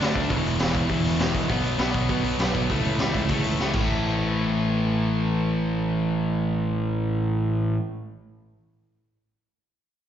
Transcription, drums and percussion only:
0.01 snare, open hi-hat
0.15 kick, open hi-hat
0.30 kick, open hi-hat
0.46 open hi-hat
0.59 snare, open hi-hat
0.75 kick, open hi-hat
0.90 kick, open hi-hat
1.04 open hi-hat
1.19 snare, open hi-hat
1.35 kick, open hi-hat
1.49 kick, open hi-hat
1.64 open hi-hat
1.78 snare, open hi-hat
1.94 kick, open hi-hat
2.09 kick, open hi-hat
2.24 open hi-hat
2.39 snare, open hi-hat
2.55 kick, open hi-hat
2.70 kick, open hi-hat
2.84 open hi-hat
2.99 snare, open hi-hat
3.14 kick, open hi-hat
3.28 kick, open hi-hat
3.44 open hi-hat
3.60 snare
3.73 kick, crash

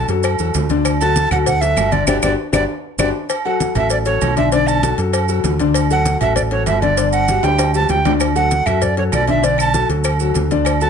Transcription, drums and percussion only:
0.08 cowbell, maracas
0.23 cowbell, high conga, low agogo, claves, maracas
0.39 high conga, low agogo, maracas
0.54 cowbell, high conga, low timbale, maracas
0.69 cowbell, high conga, maracas
0.85 cowbell, high conga, low agogo, claves, maracas
1.00 high conga, low agogo, maracas
1.16 cowbell, high conga, low timbale, maracas
1.31 cowbell, high conga, low conga, low agogo, claves, maracas
1.46 cowbell, high conga, low conga, maracas
1.62 cowbell, high conga, maracas
1.77 cowbell, high conga, low timbale, low agogo, claves, maracas
1.92 cowbell, high conga, low agogo, maracas
2.07 cowbell, high conga, high timbale, claves, maracas
2.22 cowbell, high conga, high timbale, claves, maracas
2.53 cowbell, high conga, high timbale, claves, maracas
2.99 cowbell, high conga, high timbale, claves, maracas
3.30 cowbell, high conga, low agogo, maracas
3.45 high conga, low agogo
3.60 cowbell, high conga, low timbale, maracas
3.75 cowbell, high conga, low conga, low agogo, maracas
3.90 cowbell, high conga, maracas
4.05 cowbell, high conga, maracas
4.21 cowbell, high conga, low timbale, low agogo, maracas
4.37 cowbell, high conga, low agogo, maracas
4.52 cowbell, high conga, maracas
4.68 high conga, low agogo, maracas
4.83 cowbell, high conga, low timbale, low agogo, maracas
4.98 cowbell, maracas
5.13 cowbell, high conga, low agogo, maracas
5.28 high conga, low agogo, maracas
5.44 cowbell, high conga, low timbale, maracas
5.59 cowbell, high conga, maracas
5.74 cowbell, low agogo, maracas
5.90 high conga, low agogo, maracas
6.05 cowbell, high conga, low timbale, maracas
6.21 cowbell, high conga, low conga, low agogo, maracas
6.36 cowbell, high conga, low conga, maracas
6.51 cowbell, high conga
6.66 cowbell, high conga, low timbale, low agogo, maracas
6.82 cowbell, high conga, low agogo, maracas
6.97 cowbell, high conga, maracas
7.13 high conga, low agogo, maracas
7.28 cowbell, high conga, low timbale, low agogo, maracas
7.43 cowbell, high timbale, maracas
7.58 cowbell, high conga, high timbale, low agogo, maracas
7.74 high conga, low timbale, low agogo, maracas
7.89 cowbell, high conga, low timbale, maracas
8.05 cowbell, high conga, low timbale, maracas
8.20 cowbell, low agogo, claves, maracas
8.36 high conga, low agogo, maracas
8.51 cowbell, high conga, low timbale, maracas
8.66 cowbell, high conga, low conga, low agogo, claves, maracas
8.82 cowbell, high conga, low conga, maracas
8.97 cowbell, high conga
9.12 cowbell, high conga, low timbale, low agogo, claves, maracas
9.28 cowbell, high conga, low agogo, maracas
9.44 cowbell, high conga, maracas
9.58 high conga, low agogo, claves, maracas
9.74 cowbell, high conga, low timbale, low agogo, maracas
9.90 cowbell, maracas
10.04 cowbell, high conga, low agogo, claves, maracas
10.20 high conga, low agogo, maracas
10.34 cowbell, high conga, low timbale, maracas
10.51 cowbell, high conga, maracas
10.65 cowbell, high conga, low agogo, claves, maracas
10.80 high conga, low agogo, maracas

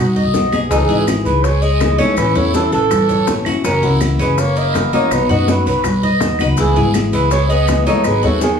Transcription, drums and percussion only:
0.16 high bongo, high conga, low conga
0.34 high bongo, low bongo, high conga, short guiro, maracas
0.52 high bongo, high conga, short guiro, claves, maracas
0.71 high bongo, long guiro, maracas
0.90 high conga, maracas
1.07 high bongo, high conga, short guiro, claves, maracas
1.25 high conga, short guiro, maracas
1.44 high bongo, high conga, long guiro, maracas
1.63 high conga, maracas
1.80 high bongo, low bongo, high conga, short guiro, claves, maracas
1.99 high conga, short guiro, maracas
2.17 high bongo, high conga, long guiro, claves, maracas
2.35 high bongo, high conga, maracas
2.54 high bongo, high conga, short guiro, maracas
2.72 high bongo, high conga, short guiro, maracas
2.91 high bongo, high conga, low conga, long guiro, claves, maracas
3.09 high bongo, high conga, low conga, maracas
3.27 high bongo, low bongo, high conga, short guiro, maracas
3.45 high conga, short guiro, claves, maracas
3.65 high bongo, high conga, long guiro, maracas
3.83 high conga, maracas
4.01 high bongo, high conga, short guiro, claves, maracas
4.19 high conga, short guiro, maracas
4.38 high bongo, high conga, long guiro, maracas
4.56 high conga, maracas
4.74 high bongo, low bongo, high conga, short guiro, claves, maracas
4.93 high conga, short guiro, maracas
5.11 high bongo, high conga, long guiro, claves, maracas
5.30 high bongo, high conga, maracas
5.48 high bongo, high conga, short guiro, maracas
5.66 high bongo, high conga, short guiro, maracas
5.84 high bongo, high conga, low conga, long guiro, claves, maracas
6.03 high bongo, high conga, low conga, maracas
6.21 high bongo, low bongo, high conga, short guiro, maracas
6.39 high conga, short guiro, claves, maracas
6.57 high bongo, long guiro, maracas
6.76 high conga, maracas
6.94 high bongo, high conga, short guiro, claves, maracas
7.13 high conga, short guiro, maracas
7.31 high bongo, high conga, long guiro, maracas
7.50 high conga, maracas
7.67 high bongo, low bongo, high conga, short guiro, claves, maracas
7.86 high conga, short guiro, maracas
8.04 high bongo, high conga, long guiro, claves, maracas
8.23 high bongo, high conga, maracas
8.41 high bongo, high conga, short guiro, maracas

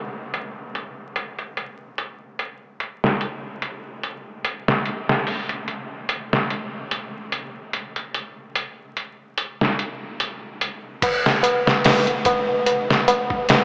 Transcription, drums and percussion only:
0.34 closed hi-hat
0.75 closed hi-hat
1.16 closed hi-hat
1.39 closed hi-hat
1.57 closed hi-hat
1.98 closed hi-hat
2.39 closed hi-hat
2.80 closed hi-hat
3.04 snare
3.21 closed hi-hat
3.62 closed hi-hat
4.03 closed hi-hat
4.44 closed hi-hat
4.68 snare
4.86 closed hi-hat
5.09 snare
5.27 open hi-hat
5.49 closed hi-hat
5.68 closed hi-hat
6.09 closed hi-hat
6.33 snare
6.50 closed hi-hat
6.91 closed hi-hat
7.32 closed hi-hat
7.73 closed hi-hat
7.96 closed hi-hat
8.14 closed hi-hat
8.55 closed hi-hat
8.97 closed hi-hat
9.38 closed hi-hat
9.61 snare
9.79 closed hi-hat
10.20 closed hi-hat
10.61 closed hi-hat
11.02 kick, closed hi-hat, crash, tabla na
11.26 snare
11.43 closed hi-hat, tabla na
11.66 snare, tabla na
11.84 snare, open hi-hat, tabla na
12.07 closed hi-hat
12.25 kick, closed hi-hat, tabla na
12.49 tabla na
12.66 closed hi-hat, tabla na
12.90 snare
13.08 closed hi-hat, tabla na
13.30 kick, tabla na
13.49 snare, closed hi-hat, tabla na

